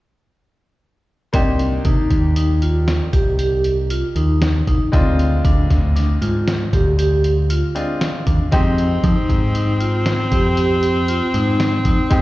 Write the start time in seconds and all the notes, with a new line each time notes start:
1.33 C2 A#3 C4 D4 D#4 G4, kick, closed hi-hat
1.59 closed hi-hat
1.85 C3 D#4, kick, closed hi-hat
2.10 D#2, kick, closed hi-hat
2.36 D#4, closed hi-hat
2.62 F4, closed hi-hat
2.88 snare, closed hi-hat
3.13 C2 G4, kick, closed hi-hat
3.39 G4, closed hi-hat
3.64 closed hi-hat
3.90 F4, closed hi-hat
4.15 D#2 D#4, closed hi-hat
4.42 snare, closed hi-hat
4.67 C2 D#4, kick, closed hi-hat
4.92 D2 G#3 C4 D4 F4, kick, closed hi-hat
5.19 closed hi-hat
5.45 D2 D4, kick, closed hi-hat
5.70 D2, kick, snare, closed hi-hat
5.96 D4, snare, closed hi-hat
6.22 G#2 F4, closed hi-hat
6.48 snare, closed hi-hat
6.73 D2 G4, kick, closed hi-hat
6.99 G4, closed hi-hat
7.24 closed hi-hat
7.50 F4, closed hi-hat
7.75 G#3 C4 D4 F4, closed hi-hat
8.01 snare, closed hi-hat
8.27 D#2 D4, kick, closed hi-hat
8.51 F2 G#3 C4 D#4 G4, kick, closed hi-hat
8.78 closed hi-hat
9.04 F3 D#4, kick, closed hi-hat
9.29 G#2, kick, closed hi-hat
9.55 D#4, closed hi-hat
9.80 F4, closed hi-hat
10.06 snare, closed hi-hat
10.32 F2 G4, kick, closed hi-hat
10.57 G4, closed hi-hat
10.83 closed hi-hat
11.08 F4, closed hi-hat
11.34 G#2 D#4, closed hi-hat
11.60 snare, closed hi-hat
11.85 F2 D#4, kick, closed hi-hat
12.10 F2 G#3 C4 D#4 G4, kick, closed hi-hat